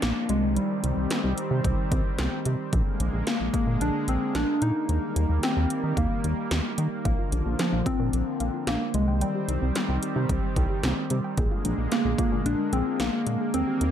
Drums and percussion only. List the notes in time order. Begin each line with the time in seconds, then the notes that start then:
0.02 snare, closed hi-hat
0.29 closed hi-hat
0.57 closed hi-hat
0.84 closed hi-hat
1.10 snare, closed hi-hat
1.38 closed hi-hat
1.65 kick, closed hi-hat
1.92 kick, closed hi-hat
2.18 snare, closed hi-hat
2.45 closed hi-hat
2.73 kick, closed hi-hat
3.00 closed hi-hat
3.27 snare, closed hi-hat
3.54 kick, closed hi-hat
3.81 closed hi-hat
4.08 closed hi-hat
4.35 snare, closed hi-hat
4.62 closed hi-hat
4.89 closed hi-hat
5.16 closed hi-hat
5.43 snare, closed hi-hat
5.70 closed hi-hat
5.97 kick, closed hi-hat
6.24 closed hi-hat
6.51 snare, closed hi-hat
6.78 closed hi-hat
7.05 kick, closed hi-hat
7.32 closed hi-hat
7.59 snare, closed hi-hat
7.86 kick, closed hi-hat
8.13 closed hi-hat
8.40 closed hi-hat
8.67 snare, closed hi-hat
8.94 closed hi-hat
9.21 closed hi-hat
9.49 closed hi-hat
9.75 snare, closed hi-hat
10.03 closed hi-hat
10.29 kick, closed hi-hat
10.56 kick, closed hi-hat
10.83 snare, closed hi-hat
11.10 closed hi-hat
11.37 kick, closed hi-hat
11.65 closed hi-hat
11.92 snare, closed hi-hat
12.18 kick, closed hi-hat
12.46 closed hi-hat
12.73 closed hi-hat
13.00 snare, closed hi-hat
13.27 closed hi-hat
13.54 closed hi-hat
13.81 closed hi-hat